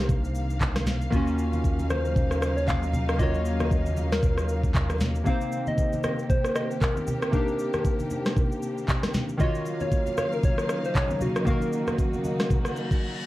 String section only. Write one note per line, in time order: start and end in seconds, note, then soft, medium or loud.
0.00 1.08 C3 medium
0.00 1.08 D#3 medium
0.00 9.36 A#3 medium
0.00 1.08 C4 medium
0.00 5.22 F5 medium
1.12 5.22 C#3 medium
1.12 5.22 F#3 medium
1.12 5.22 D#4 medium
5.26 9.36 C3 medium
5.26 9.36 D#3 medium
5.26 9.36 C4 medium
5.26 9.36 G4 medium
9.40 13.26 C#3 medium
9.40 13.26 F#3 medium
9.40 13.26 A#3 medium
9.40 13.26 D#4 medium
9.40 11.45 F5 medium
11.47 13.26 F#4 medium